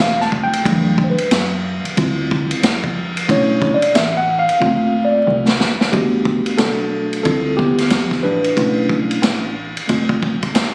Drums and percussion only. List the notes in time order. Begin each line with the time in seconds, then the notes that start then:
0.00 snare
0.20 snare
0.32 kick
0.53 ride
0.65 kick, ride
0.98 kick
1.18 ride
1.31 snare, hi-hat pedal, ride
1.85 ride
1.97 kick, ride
2.31 kick
2.51 ride
2.63 snare, hi-hat pedal, ride
2.84 kick
3.17 ride
3.29 kick, ride
3.62 kick
3.82 ride
3.95 snare, hi-hat pedal, ride
4.49 ride
4.62 kick
5.48 snare
5.60 snare
5.81 snare
5.93 kick, ride
6.25 kick
6.46 ride
6.58 snare, hi-hat pedal, ride
7.13 ride
7.25 kick, ride
7.59 kick
7.78 snare, ride
7.90 snare, hi-hat pedal, ride
8.11 kick, snare
8.44 ride
8.57 kick, ride
8.89 kick
9.11 ride
9.23 snare, hi-hat pedal, ride
9.77 ride
9.89 kick, ride
10.09 kick
10.23 kick
10.43 kick, ride
10.55 snare, hi-hat pedal, ride